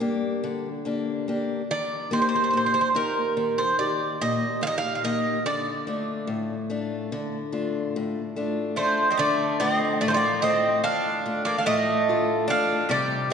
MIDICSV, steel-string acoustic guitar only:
0, 0, Header, 1, 2, 480
1, 0, Start_track
1, 0, Tempo, 836820
1, 965, Time_signature, 9, 3, 24, 8
1, 4321, Tempo, 826446
1, 7688, End_track
2, 0, Start_track
2, 0, Title_t, "Steel-string acoustic guitar"
2, 0, Program_c, 0, 25
2, 0, Note_on_c, 0, 43, 68
2, 1, Note_on_c, 0, 58, 47
2, 5, Note_on_c, 0, 62, 40
2, 7, Note_on_c, 0, 67, 51
2, 227, Note_off_c, 0, 43, 0
2, 250, Note_on_c, 0, 50, 64
2, 387, Note_off_c, 0, 58, 0
2, 389, Note_off_c, 0, 62, 0
2, 390, Note_off_c, 0, 67, 0
2, 488, Note_on_c, 0, 58, 43
2, 492, Note_on_c, 0, 62, 46
2, 497, Note_on_c, 0, 67, 43
2, 713, Note_off_c, 0, 50, 0
2, 728, Note_off_c, 0, 58, 0
2, 730, Note_off_c, 0, 62, 0
2, 733, Note_off_c, 0, 67, 0
2, 733, Note_on_c, 0, 58, 43
2, 739, Note_on_c, 0, 62, 41
2, 740, Note_on_c, 0, 67, 49
2, 923, Note_off_c, 0, 58, 0
2, 924, Note_off_c, 0, 62, 0
2, 926, Note_off_c, 0, 67, 0
2, 979, Note_on_c, 0, 51, 64
2, 1210, Note_on_c, 0, 58, 53
2, 1216, Note_on_c, 0, 63, 41
2, 1217, Note_on_c, 0, 67, 56
2, 1438, Note_off_c, 0, 51, 0
2, 1454, Note_on_c, 0, 46, 67
2, 1594, Note_off_c, 0, 58, 0
2, 1595, Note_off_c, 0, 63, 0
2, 1597, Note_off_c, 0, 67, 0
2, 1690, Note_on_c, 0, 58, 52
2, 1691, Note_on_c, 0, 63, 37
2, 1695, Note_on_c, 0, 67, 54
2, 1916, Note_off_c, 0, 46, 0
2, 1932, Note_on_c, 0, 51, 68
2, 2072, Note_off_c, 0, 63, 0
2, 2073, Note_off_c, 0, 58, 0
2, 2076, Note_off_c, 0, 67, 0
2, 2176, Note_on_c, 0, 67, 53
2, 2178, Note_on_c, 0, 63, 39
2, 2182, Note_on_c, 0, 58, 41
2, 2394, Note_off_c, 0, 51, 0
2, 2417, Note_on_c, 0, 46, 64
2, 2556, Note_off_c, 0, 58, 0
2, 2556, Note_off_c, 0, 63, 0
2, 2556, Note_off_c, 0, 67, 0
2, 2645, Note_on_c, 0, 58, 48
2, 2648, Note_on_c, 0, 63, 44
2, 2653, Note_on_c, 0, 67, 44
2, 2876, Note_off_c, 0, 46, 0
2, 2885, Note_off_c, 0, 58, 0
2, 2885, Note_off_c, 0, 63, 0
2, 2888, Note_off_c, 0, 67, 0
2, 2891, Note_on_c, 0, 58, 44
2, 2894, Note_on_c, 0, 63, 38
2, 2895, Note_on_c, 0, 67, 49
2, 3081, Note_off_c, 0, 58, 0
2, 3081, Note_off_c, 0, 63, 0
2, 3083, Note_off_c, 0, 67, 0
2, 3131, Note_on_c, 0, 50, 66
2, 3366, Note_on_c, 0, 57, 49
2, 3368, Note_on_c, 0, 62, 41
2, 3373, Note_on_c, 0, 65, 51
2, 3591, Note_off_c, 0, 50, 0
2, 3599, Note_on_c, 0, 45, 62
2, 3747, Note_off_c, 0, 57, 0
2, 3749, Note_off_c, 0, 62, 0
2, 3750, Note_off_c, 0, 65, 0
2, 3841, Note_on_c, 0, 57, 44
2, 3844, Note_on_c, 0, 62, 38
2, 3849, Note_on_c, 0, 65, 42
2, 4064, Note_off_c, 0, 45, 0
2, 4085, Note_on_c, 0, 50, 65
2, 4223, Note_off_c, 0, 57, 0
2, 4225, Note_off_c, 0, 62, 0
2, 4226, Note_off_c, 0, 65, 0
2, 4316, Note_on_c, 0, 57, 45
2, 4317, Note_on_c, 0, 62, 38
2, 4318, Note_on_c, 0, 65, 51
2, 4548, Note_off_c, 0, 50, 0
2, 4569, Note_on_c, 0, 45, 69
2, 4702, Note_off_c, 0, 62, 0
2, 4703, Note_off_c, 0, 57, 0
2, 4704, Note_off_c, 0, 65, 0
2, 4803, Note_on_c, 0, 57, 44
2, 4806, Note_on_c, 0, 62, 42
2, 4810, Note_on_c, 0, 65, 39
2, 5032, Note_off_c, 0, 45, 0
2, 5037, Note_off_c, 0, 57, 0
2, 5037, Note_off_c, 0, 62, 0
2, 5041, Note_off_c, 0, 65, 0
2, 5043, Note_on_c, 0, 57, 44
2, 5047, Note_on_c, 0, 62, 32
2, 5048, Note_on_c, 0, 65, 47
2, 5236, Note_off_c, 0, 57, 0
2, 5236, Note_off_c, 0, 62, 0
2, 5238, Note_off_c, 0, 65, 0
2, 5282, Note_on_c, 0, 50, 63
2, 5524, Note_on_c, 0, 57, 54
2, 5529, Note_on_c, 0, 65, 53
2, 5748, Note_off_c, 0, 50, 0
2, 5765, Note_on_c, 0, 45, 64
2, 5908, Note_off_c, 0, 57, 0
2, 5911, Note_off_c, 0, 65, 0
2, 6000, Note_on_c, 0, 57, 42
2, 6004, Note_on_c, 0, 65, 47
2, 6230, Note_off_c, 0, 45, 0
2, 6243, Note_on_c, 0, 50, 68
2, 6385, Note_off_c, 0, 57, 0
2, 6388, Note_off_c, 0, 65, 0
2, 6484, Note_on_c, 0, 57, 51
2, 6488, Note_on_c, 0, 65, 49
2, 6708, Note_off_c, 0, 50, 0
2, 6724, Note_on_c, 0, 45, 73
2, 6866, Note_off_c, 0, 57, 0
2, 6869, Note_off_c, 0, 65, 0
2, 6968, Note_on_c, 0, 65, 52
2, 6970, Note_on_c, 0, 57, 45
2, 6975, Note_on_c, 0, 50, 44
2, 7187, Note_off_c, 0, 45, 0
2, 7199, Note_off_c, 0, 57, 0
2, 7202, Note_off_c, 0, 65, 0
2, 7205, Note_on_c, 0, 57, 49
2, 7209, Note_on_c, 0, 62, 37
2, 7209, Note_on_c, 0, 65, 50
2, 7349, Note_off_c, 0, 50, 0
2, 7395, Note_off_c, 0, 57, 0
2, 7395, Note_off_c, 0, 62, 0
2, 7397, Note_off_c, 0, 65, 0
2, 7435, Note_on_c, 0, 48, 66
2, 7688, Note_off_c, 0, 48, 0
2, 7688, End_track
0, 0, End_of_file